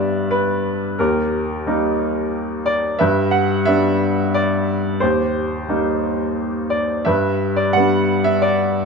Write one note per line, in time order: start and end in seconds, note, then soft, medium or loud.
0.00 0.96 G2 soft
0.00 0.95 G3 soft
0.00 0.96 B3 soft
0.00 0.96 D4 soft
0.00 0.31 B4 soft
0.00 1.01 D5 medium
0.00 1.01 E5 medium
0.31 0.95 B4 medium
0.99 2.96 D#2 soft
0.99 2.63 G4 soft
0.99 2.62 A#4 medium
1.66 2.96 G3 soft
1.66 2.96 A#3 soft
1.66 2.96 D#4 soft
2.66 3.00 D5 medium
2.99 4.98 G2 medium
2.99 3.96 B4 medium
2.99 3.33 E5 medium
3.31 3.67 F#5 medium
3.65 4.98 G3 soft
3.65 4.98 B3 soft
3.65 4.98 D4 soft
3.65 4.30 E5 medium
4.34 5.04 D5 medium
5.00 7.03 D#2 soft
5.00 6.69 G4 soft
5.00 6.68 C5 medium
5.68 7.03 G3 soft
5.68 7.03 A#3 soft
5.68 7.03 D#4 soft
6.70 7.07 D5 medium
7.05 8.85 G2 soft
7.05 8.07 B4 soft
7.05 7.54 E5 medium
7.56 7.74 D5 medium
7.73 8.85 G3 soft
7.73 8.85 B3 soft
7.73 8.28 F#5 medium
7.77 8.85 D4 soft
8.24 8.42 E5 medium
8.42 8.85 D5 medium